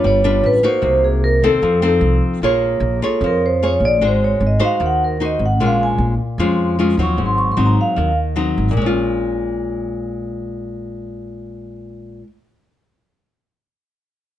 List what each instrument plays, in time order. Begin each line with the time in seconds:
Already playing: nylon-string guitar D4 F4 B4
0.04 upright bass G1, nylon-string guitar G3, vibraphone C#5
0.24 nylon-string guitar D4 F4 B4
0.43 upright bass A1, vibraphone B4
0.63 nylon-string guitar A#3 D#4 F#4, vibraphone C5
0.82 upright bass C2, nylon-string guitar C3
1.04 vibraphone G#4
1.24 vibraphone A#4
1.42 upright bass D#2, nylon-string guitar C4 D#4 A4, vibraphone A4
1.62 upright bass F2, nylon-string guitar F3
1.82 nylon-string guitar C4 D#4 A4
2.01 upright bass C2
2.42 upright bass A#1, nylon-string guitar A#3 F4 G#4 C#5
2.80 upright bass A#1
3.02 nylon-string guitar F4 G#4 C#5, vibraphone A4
3.21 upright bass F2, nylon-string guitar F3
3.26 vibraphone A#4
3.46 vibraphone C5
3.63 nylon-string guitar F4 G#4 C#5
3.67 vibraphone C#5
3.80 upright bass A#1
3.85 vibraphone D5
4.01 upright bass G#1, nylon-string guitar G#3 D#4 F#4 C5
4.08 vibraphone C5
4.24 vibraphone C#5
4.40 upright bass G#1
4.47 vibraphone D#5
4.60 nylon-string guitar D#4 F#4 C5
4.65 vibraphone F5
4.80 upright bass D#2, nylon-string guitar D#3
4.86 vibraphone F#5
5.04 vibraphone A#4
5.20 nylon-string guitar D#4 F#4 C5
5.25 vibraphone D#5
5.39 upright bass G#1
5.46 vibraphone F#5
5.59 upright bass A#1, nylon-string guitar A#2 G#3 C#4 F4
5.66 vibraphone F5
5.83 vibraphone G#5
5.98 upright bass A#1
6.38 upright bass F2, nylon-string guitar F3 G#3 C#4 F4
6.79 nylon-string guitar G#3 C#4 F4
6.97 upright bass D#2, nylon-string guitar F#3 C4 D#4
7.02 vibraphone C#6
7.17 upright bass G#1, nylon-string guitar G#2
7.26 vibraphone C6
7.38 vibraphone C#6
7.52 vibraphone C6
7.57 upright bass G#1, nylon-string guitar F#3 C4 D#4
7.66 vibraphone A#5
7.81 vibraphone F5
7.96 upright bass D#2, nylon-string guitar D#3
8.36 nylon-string guitar F#3 C4 D#4
8.58 upright bass G#1
8.71 nylon-string guitar A#2
8.77 upright bass A#1, nylon-string guitar G#3
8.82 nylon-string guitar C#4
8.86 nylon-string guitar F4